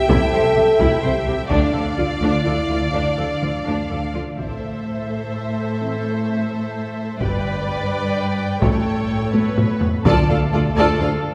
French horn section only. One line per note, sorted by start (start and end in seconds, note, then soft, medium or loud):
0.09 1.01 A4 loud
1.03 1.26 G4 medium
1.50 1.94 D4 medium
1.98 2.45 F4 medium
2.44 2.93 E4 medium
2.92 4.12 D4 medium
4.38 4.55 E3 soft
4.38 4.55 C4 soft
5.80 5.97 E3 soft
5.80 5.97 C4 soft
7.20 7.37 G3 medium
7.20 7.37 B3 soft
8.61 8.79 G3 soft
8.61 8.78 C#4 soft
9.33 10.01 B3 medium
10.05 11.34 A3 medium